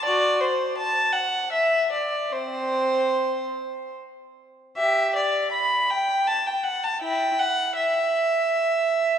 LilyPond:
\new Staff \with { instrumentName = "Violin" } { \time 3/4 \key c \major \tempo 4 = 80 << { d''8 c''8 a''8 fis''8 e''8 d''8 | c''2 r4 | \key e \minor e''8 d''8 b''8 g''8 a''16 g''16 fis''16 a''16 | g''8 fis''8 e''2 | } \\ { fis'8 r2 r8 | c'4. r4. | g'8 r2 r8 | e'8 r2 r8 | } >> }